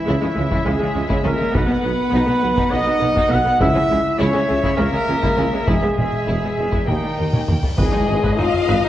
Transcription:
Already playing: timpani C#3, french horn section E3, trumpet section E4, violin section E5
0.06 double bass section C#2, tuba C#2, cello section C#3, viola section G#3, violin section E4
0.21 cello section C#3, viola section G#3, violin section C#4
0.36 double bass section C#2, tuba C#2, cello section C#3, viola section G#3, violin section G#3
0.51 cello section C#3, viola section G#3, violin section E4, taiko
0.65 double bass section C#2, tuba C#2, cello section C#3, viola section G#3, french horn section G#3, violin section C#4, trumpet section G#4
0.79 cello section C#3, viola section G#3, violin section G#3
0.94 double bass section C#2, tuba C#2, cello section C#3, viola section G#3, violin section C#4
1.08 cello section C#3, viola section G#3, violin section E4, taiko
1.23 double bass section C#2, tuba C#2, cello section C#3, viola section G#3, french horn section A#3, violin section C#4, trumpet section A#4
1.37 cello section C#3, viola section G#3
1.42 violin section G#3
1.51 tuba B1, double bass section B1, viola section B3, violin section D#4 F#5, trumpet section B4, taiko
1.55 cello section B2, french horn section B3
1.67 cello section B2, viola section B3, violin section B3
1.82 double bass section B1, tuba B1, cello section B2, viola section B3, violin section B3
2.11 double bass section B1, tuba B1, cello section B2, viola section B3, violin section D#4
2.25 cello section B2, viola section B3, violin section B3
2.41 double bass section B1, tuba B1, cello section B2, viola section B3, violin section B3
2.55 cello section B2, viola section B3, violin section D#4, taiko
2.70 tuba B1, double bass section B1, cello section B2, viola section B3, violin section B3, trumpet section D#5
2.75 french horn section D#4
2.84 cello section B2, viola section B3, violin section B3
2.99 double bass section B1, tuba B1, cello section B2, viola section B3, violin section B3
3.14 cello section B2, viola section B3, violin section D#4, taiko
3.28 double bass section B1, cello section B2, viola section B3, french horn section F#4, trumpet section F#5
3.33 tuba B1, violin section B3
3.44 cello section B2, viola section B3, violin section B3
3.59 double bass section C#2, tuba C#2, cello section C#3, timpani C#3, viola section G#3, french horn section E4, violin section E4 E5, trumpet section E5, taiko
3.74 cello section C#3, viola section G#3, violin section C#4
3.90 tuba C#2, double bass section C#2, cello section C#3, viola section G#3, violin section G#3
4.19 double bass section C#2, tuba C#2, cello section C#3, viola section G#3, french horn section C#4, violin section E4, trumpet section C#5
4.33 cello section C#3, viola section G#3, violin section C#4
4.48 tuba C#2, double bass section C#2, cello section C#3, violin section G#3, viola section G#3
4.63 cello section C#3, viola section G#3, violin section E4, taiko
4.77 tuba C#2, double bass section C#2, cello section C#3, viola section G#3, french horn section A#3, violin section C#4, trumpet section A#4
4.92 cello section C#3, violin section G#3, viola section G#3
5.07 tuba C#2, double bass section C#2, cello section C#3, viola section G#3, violin section C#4
5.22 cello section C#3, viola section G#3, violin section E4, taiko
5.37 tuba C#2, double bass section C#2, cello section C#3, viola section G#3, violin section C#4
5.52 cello section C#3, violin section G#3, viola section G#3
5.66 double bass section E1, tuba E1, cello section E2, french horn section G#3, viola section G#3, violin section E4, trumpet section G#4, taiko, cymbal swell
5.82 cello section E2, viola section G#3, violin section B3
5.97 tuba E1, double bass section E1, cello section E2, violin section G#3, viola section G#3, taiko mid
6.12 taiko mid
6.27 tuba E1, double bass section E1, cello section E2, viola section G#3, violin section E4
6.42 cello section E2, viola section G#3, violin section B3
6.58 double bass section E1, tuba E1, cello section E2, violin section G#3, viola section G#3
6.70 cello section E2, viola section G#3, violin section E4, taiko
6.86 cello section D#2, double bass section D#2, tuba D#2, french horn section D#3, violin section A#3 G5, viola section A#3, trumpet section D#4, taiko mid
7.02 cello section D#2, violin section G3, viola section A#3
7.18 double bass section D#2, cello section D#2, tuba D#2, violin section A#3, viola section A#3
7.32 cello section D#2, viola section A#3, violin section C#4, taiko mid
7.48 cello section D#2, double bass section D#2, tuba D#2, viola section A#3, violin section A#3, taiko low-mid
7.62 cello section D#2, violin section G3, viola section A#3, taiko low
7.77 double bass section G#1, tuba G#1, cello section G#2, french horn section G#3, violin section G#4, viola section B4 D#5, taiko, tam-tam, impact
7.93 cello section G#2, viola section D#4
8.08 double bass section G#1, tuba G#1, cello section G#2, viola section G#4
8.23 cello section G#2, viola section B4, taiko
8.38 double bass section G#1, tuba G#1, cello section G#2, viola section D#4, french horn section F4, violin section F5, taiko low-mid
8.54 taiko low-mid
8.68 tuba G#1, double bass section G#1, cello section G#2, viola section B4, taiko
8.83 cello section G#2, viola section D#4

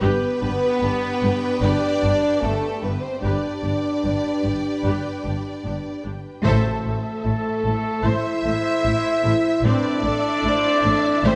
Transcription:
0.01 double bass section G1, cello section G2, french horn section B3, string section D4 G4 B4 G5, viola section G4 B4, violin section B4
0.41 double bass section G1, cello section G2, viola section D4 G4
0.82 double bass section G1, cello section G2, viola section B3 D4
1.22 double bass section G1, cello section G2, viola section D4 G4
1.62 double bass section G1, cello section G2, french horn section D4, viola section G4 B4, violin section D5
2.03 double bass section G1, cello section G2, viola section D4 G4
2.41 double bass section G1, cello section G2, french horn section A3, viola section B3 D4, violin section A4
2.82 double bass section G1, cello section G2, french horn section B3, viola section D4 G4, violin section B4
3.02 french horn section C4, violin section C5
3.21 double bass section G1, cello section G2, french horn section D4, string section D4 G4 G5, viola section G4 B4, violin section D5
3.25 string section B4
3.63 double bass section G1, cello section G2, viola section D4 G4
4.03 double bass section G1, cello section G2, viola section B3 D4
4.44 double bass section G1, cello section G2, viola section D4 G4
4.83 double bass section G1, cello section G2, viola section G4 B4
5.24 double bass section G1, cello section G2, viola section D4 G4
5.63 double bass section G1, cello section G2, viola section B3 D4
6.03 double bass section G1, cello section G2, viola section D4 G4
6.43 double bass section A1, timpani A2, cello section A2, french horn section A3, string section E4 A4 C5 E5, violin section A4, trumpet section A4, viola section C5 E5
6.85 double bass section A1, cello section A2, viola section A4
7.24 double bass section A1, cello section A2, viola section E4
7.63 double bass section A1, cello section A2, viola section A4
8.03 double bass section A1, cello section A2, french horn section E4, viola section C5, flute section C5, violin section E5, trumpet section E5
8.44 double bass section A1, cello section A2, viola section A4
8.84 double bass section A1, cello section A2, viola section E4
9.23 double bass section A1, cello section A2, viola section A4
9.63 double bass section A1, cello section A2, string section C4 E4 A4 E5, viola section C4 E5, french horn section D4, flute section B4, violin section D5, trumpet section D5
10.04 double bass section A1, cello section A2, viola section A4, flute section A4
10.44 double bass section A1, cello section A2, viola section E4
10.48 flute section C5
10.84 double bass section A1, cello section A2, viola section A4, flute section D5
11.24 double bass section A1, cello section A2, french horn section C4, viola section C5, trumpet section C5, violin section C5, flute section E5

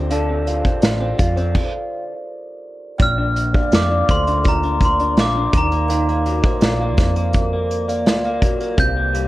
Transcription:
Already playing: picked electric bass D2, clean electric guitar D3 C4
0.10 clean electric guitar D3 A4, kalimba D5 F5, closed hi-hat
0.29 clean electric guitar C4
0.46 clean electric guitar F4, kalimba A#4 D5, closed hi-hat
0.65 clean electric guitar C4, kick, closed hi-hat
0.82 picked electric bass A1, clean electric guitar F4, kalimba A4 D5, snare, closed hi-hat
1.00 clean electric guitar C4
1.19 picked electric bass F2, clean electric guitar F4, kick, closed hi-hat
1.36 clean electric guitar C4, kalimba A4 C5, closed hi-hat
1.55 kick, crash
2.98 picked electric bass A#1, clean electric guitar A#2, kalimba D5 G5, kick, closed hi-hat
3.02 glockenspiel F6
3.18 clean electric guitar D4
3.36 closed hi-hat
3.54 clean electric guitar D4, kalimba D5 F5, kick, closed hi-hat
3.72 picked electric bass F2, clean electric guitar F4, kalimba A#4 D5, glockenspiel D6, snare, closed hi-hat
3.91 clean electric guitar D4
4.08 picked electric bass D2, clean electric guitar A3, kalimba A4 C5, glockenspiel C6, kick, closed hi-hat
4.27 clean electric guitar D4, closed hi-hat
4.44 clean electric guitar A#2, kalimba F4 A#4, kick, closed hi-hat
4.48 glockenspiel A#5
4.63 clean electric guitar D4, closed hi-hat
4.81 kick, closed hi-hat
4.85 glockenspiel C6
4.99 clean electric guitar D4, kalimba A#4 D5, closed hi-hat
5.17 picked electric bass A#1, clean electric guitar F4, glockenspiel D6, snare, closed hi-hat
5.37 clean electric guitar D4
5.53 picked electric bass D#2, clean electric guitar D#3, kick, closed hi-hat
5.57 glockenspiel A#5
5.72 clean electric guitar A#3, closed hi-hat
5.88 clean electric guitar D#3, kalimba A#4 F5, closed hi-hat
6.09 clean electric guitar A#3, closed hi-hat
6.26 clean electric guitar F#3, closed hi-hat
6.43 clean electric guitar A#3, kalimba C5 D#5, kick, closed hi-hat
6.61 picked electric bass A#1, clean electric guitar F4, kalimba A#4 D5, snare, closed hi-hat
6.81 clean electric guitar A#3
6.98 picked electric bass F2, kalimba A4 C5, kick, snare, closed hi-hat
7.16 clean electric guitar A#3, closed hi-hat
7.33 kalimba F#4 A#4, kick, closed hi-hat
7.53 clean electric guitar A#3
7.71 closed hi-hat
7.88 clean electric guitar A#3, kalimba A#4 D5, closed hi-hat
8.06 picked electric bass D2, clean electric guitar F4, snare, closed hi-hat
8.24 clean electric guitar A#3, closed hi-hat
8.42 picked electric bass A#1, clean electric guitar F#3, kick, closed hi-hat
8.60 clean electric guitar A#3, closed hi-hat
8.78 picked electric bass C2, clean electric guitar C3, kalimba C5 F5, glockenspiel G6, kick, closed hi-hat
8.97 clean electric guitar A#3
9.14 clean electric guitar G3, closed hi-hat

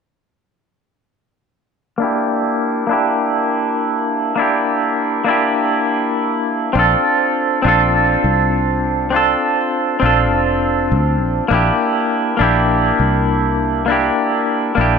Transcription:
1.98 clean electric guitar A#3 D4 E4
2.04 clean electric guitar G4
2.87 clean electric guitar A#3 D4 E4
2.93 clean electric guitar G4
4.36 clean electric guitar A#3 D4 E4
4.41 clean electric guitar G4
5.24 clean electric guitar A#3 D4 E4
5.30 clean electric guitar G4
6.73 fingered electric bass A#1, clean electric guitar C4 D4 F4
6.79 clean electric guitar A4
7.62 fingered electric bass A#1, clean electric guitar C4 D4 F4
7.68 clean electric guitar A4
8.24 fingered electric bass C2
9.10 clean electric guitar C4 D4 F4
9.16 clean electric guitar A4
10.00 fingered electric bass A#1, clean electric guitar C4 D4
10.04 clean electric guitar F4 A4
10.32 fingered electric bass F1
10.92 fingered electric bass D2
11.21 fingered electric bass A#1
11.48 fingered electric bass A#1, clean electric guitar A#3 D4 E4
11.54 clean electric guitar G4
12.37 fingered electric bass A#1, clean electric guitar A#3 D4
12.41 clean electric guitar E4 G4
13.00 fingered electric bass C2
13.86 clean electric guitar A#3 D4 E4
13.92 clean electric guitar G4
14.75 fingered electric bass A#1, clean electric guitar A#3 D4 E4
14.81 clean electric guitar G4

